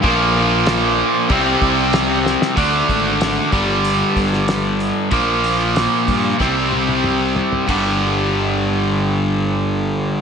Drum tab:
CC |x---x---x---x---|----------------|----------------|----------------|
RD |----------------|----------------|----------------|x---------------|
HH |----------------|o-o-o-o-o-o-o-o-|o-o-o-o---------|----------------|
SD |----o-------o-oo|----o------oo---|----o---o-------|----------------|
T1 |----------------|----------------|----------oo----|----------------|
T2 |----------------|----------------|------------o---|----------------|
FT |----------------|----------------|--------------oo|----------------|
BD |o-------o-o-----|o-o---o---o-----|o-----o-o-------|o---------------|